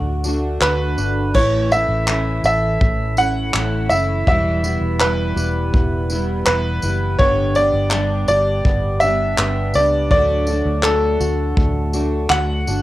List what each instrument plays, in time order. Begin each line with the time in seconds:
Already playing: fingered electric bass D2, steel-string acoustic guitar A3 D4 F#4, nylon-string guitar A3 F#4, upright piano A4
0.24 steel-string acoustic guitar A3 D4 F#4, tambourine
0.60 fingered electric bass D2, steel-string acoustic guitar D3 A3 D4, nylon-string guitar F#4, upright piano B4, clap
0.65 steel-string acoustic guitar F#4
0.97 fingered electric bass G1, nylon-string guitar D4, tambourine
1.34 fingered electric bass A1, steel-string acoustic guitar A2 E3 A3 C#4 E4, upright piano C#5, kick, crash
1.71 nylon-string guitar A3, steel-string acoustic guitar C#4 E4, upright piano E5, tambourine
1.75 steel-string acoustic guitar A3
1.89 fingered electric bass A1
2.07 steel-string acoustic guitar E3 A3 C#4 E4, clap
2.44 fingered electric bass A1, nylon-string guitar A4, upright piano E5, tambourine
2.81 fingered electric bass A1, nylon-string guitar A3, kick
3.17 steel-string acoustic guitar A3 C#4 E4, upright piano F#5, tambourine
3.54 fingered electric bass A1, steel-string acoustic guitar E3 A3 C#4 E4, clap
3.90 fingered electric bass F#1, steel-string acoustic guitar A3 C#4 E4, upright piano E5, tambourine
4.27 fingered electric bass E1, steel-string acoustic guitar E2 B2 E3 G3 B3 E4, upright piano E5, kick
4.64 steel-string acoustic guitar E3 G3 B3 E4, tambourine
4.81 fingered electric bass E1
5.00 steel-string acoustic guitar E3 G3 B3 E4, upright piano B4, clap
5.36 fingered electric bass E1, nylon-string guitar G4, tambourine
5.73 fingered electric bass E1, nylon-string guitar B3, kick
6.10 steel-string acoustic guitar G3 B3 E4, tambourine
6.14 steel-string acoustic guitar E3
6.46 fingered electric bass E1, steel-string acoustic guitar E3 G3 B3, upright piano B4, clap
6.50 steel-string acoustic guitar E4
6.82 fingered electric bass F#1, steel-string acoustic guitar G3 B3 E4, tambourine
6.87 steel-string acoustic guitar E3
7.19 fingered electric bass G1, steel-string acoustic guitar G2 D3 G3 B3 D4 G4, upright piano C#5, kick
7.55 steel-string acoustic guitar B3 D4 G4, upright piano D5, tambourine
7.59 steel-string acoustic guitar G3
7.73 fingered electric bass G1
7.91 steel-string acoustic guitar G3 B3 D4, clap
7.95 steel-string acoustic guitar G4
8.28 fingered electric bass G1, nylon-string guitar G4, upright piano D5, tambourine
8.65 fingered electric bass G1, nylon-string guitar B3, kick
9.00 steel-string acoustic guitar B3 D4 G4, upright piano E5, tambourine
9.04 steel-string acoustic guitar G3
9.38 fingered electric bass G1, steel-string acoustic guitar G3 B3 D4 G4, clap
9.74 fingered electric bass C#2, steel-string acoustic guitar B3 D4 G4, upright piano D5, tambourine
9.78 steel-string acoustic guitar G3
10.11 fingered electric bass D2, steel-string acoustic guitar D3 A3 D4 F#4, nylon-string guitar F#3, upright piano D5, kick
10.47 steel-string acoustic guitar A3 D4 F#4, tambourine
10.65 fingered electric bass D2
10.83 steel-string acoustic guitar D3 A3 D4, upright piano A4, clap
10.87 steel-string acoustic guitar F#4
11.20 fingered electric bass D2, nylon-string guitar F#4, tambourine
11.57 fingered electric bass D2, nylon-string guitar A3, kick
11.93 steel-string acoustic guitar A3 D4 F#4, tambourine
12.30 fingered electric bass D2, steel-string acoustic guitar D3 A3 D4 F#4, upright piano F#5, clap
12.67 fingered electric bass G1, steel-string acoustic guitar A3 D4 F#4, tambourine